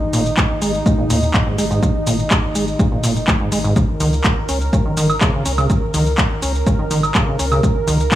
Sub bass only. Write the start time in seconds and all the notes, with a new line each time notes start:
0.13 G#1
0.62 G#1
1.10 D#2
1.58 G#1
2.07 G#1
2.55 G#1
3.04 F#1
3.52 G#1
4.00 C#2
4.49 C#2
4.97 G#1
5.46 C#2
5.94 C#2
6.42 C#2
6.91 G#1
7.39 C#2
7.87 C#2